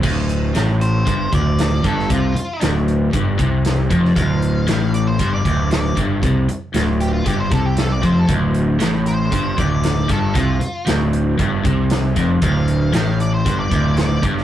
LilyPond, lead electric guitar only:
\new Staff \with { instrumentName = "Lead electric guitar" } { \time 4/4 \key d \minor \tempo 4 = 116 r4. c''4 d''4 a'8 | f'4 r2. | f''4. d''16 c''8 d''8. d''8 r8 | r4. g'16 f'16 g'16 c''16 a'16 g'16 a'16 d''16 c''16 a'16 |
r4. c''4 d''4 a'8 | f'4 r2. | f''4. d''16 c''8 d''8. d''8 r8 | }